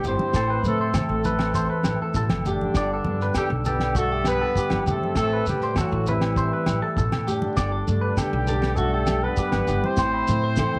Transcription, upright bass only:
0.04 0.15 G1 medium
0.34 0.57 A1 medium
0.63 0.98 A2 medium
1.09 1.67 A1 medium
1.83 1.95 A1 medium
2.14 2.26 A1 medium
2.30 2.64 F#1 medium
2.75 2.98 G1 medium
3.04 3.28 G2 medium
3.50 4.42 B1 medium
4.71 4.83 G1 medium
4.86 4.98 E2 medium
5.15 5.39 A1 medium
5.47 5.81 A2 medium
5.92 6.49 A1 medium
6.67 6.79 A1 medium
6.97 7.09 A1 medium
7.13 7.47 A2 medium
7.57 7.80 G1 medium
7.88 8.11 G2 medium
8.33 9.25 B1 loud
9.53 9.65 G1 medium
9.68 9.80 G1 medium
9.98 10.21 A1 medium
10.28 10.63 A2 medium
10.74 10.79 A1 medium

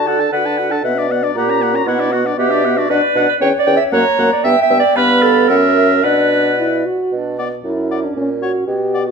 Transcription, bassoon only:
0.00 0.26 D3 medium
0.33 0.78 D3 medium
0.84 1.30 B2 medium
1.35 1.81 A#2 medium
1.87 2.32 B2 medium
2.38 2.84 B2 medium
2.89 3.01 B2 medium
3.15 3.27 B2 medium
3.41 3.53 E2 medium
3.67 3.79 E2 medium
3.93 4.04 F#2 medium
4.18 4.30 F#2 medium
4.45 4.56 G2 medium
4.70 4.82 G2 medium
4.96 5.45 G2 medium
5.49 6.03 F#2 medium
6.04 6.84 B2 medium
7.12 7.56 B2 medium
7.64 8.08 F#2 soft
8.16 8.59 A#2 soft
8.68 9.11 B2 soft

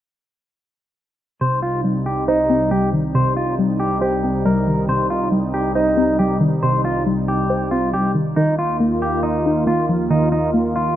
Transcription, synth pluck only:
1.41 2.50 C3 medium
1.84 2.70 G3 medium
2.28 3.37 C5 medium
2.50 3.58 C4 medium
2.71 3.58 G3 medium
2.93 4.02 D#3 medium
3.15 4.23 C3 medium
3.59 4.44 G3 medium
4.01 5.10 C5 medium
4.24 5.33 C4 medium
4.45 5.31 G3 medium
4.67 5.76 D#3 medium
4.88 5.97 C3 medium
5.32 6.18 G3 medium
5.75 6.84 C5 medium
5.97 7.06 C4 medium
6.20 7.05 G3 medium
6.41 7.49 D#3 medium
6.63 7.72 C3 medium
7.06 7.93 G3 medium
7.50 8.37 C5 medium
7.71 8.37 C4 medium
7.94 8.37 G3 medium
8.15 8.36 D#3 medium
8.37 9.45 D#3 medium
8.80 9.66 A#3 medium
9.23 10.32 D#5 medium
9.46 10.54 D#4 medium
9.67 10.53 A#3 loud
9.89 10.96 F3 medium
10.10 10.96 D#3 medium
10.54 10.96 A#3 medium

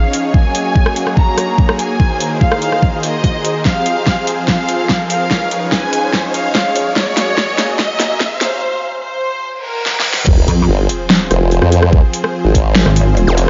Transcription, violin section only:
0.00 0.26 F5 medium
0.34 1.09 G#5 loud
1.17 1.71 A#5 loud
1.79 2.33 G#5 medium
2.41 2.95 F5 loud
3.03 3.57 D#5 loud
3.65 4.40 F5 loud
4.48 5.02 F5 medium
5.10 5.64 F5 loud
5.72 6.26 G#5 loud
6.34 6.88 F5 loud
6.96 7.71 C#5 loud
7.79 8.33 D#5 loud
8.41 8.95 C5 loud
9.03 9.57 C5 loud
9.65 10.19 A#4 loud

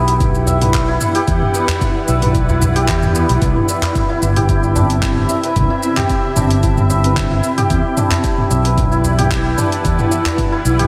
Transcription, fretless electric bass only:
0.00 0.97 B1 medium
1.28 1.39 E2 loud
2.08 2.88 B1 medium
2.88 3.25 E2 medium
3.29 3.39 B1 medium
3.42 3.53 C2 medium
4.22 5.26 G1 medium
5.56 5.68 C2 loud
6.36 7.40 G1 medium
7.70 7.82 E2 loud
8.51 9.54 B1 medium
9.85 9.96 E2 medium
10.65 10.87 B1 medium

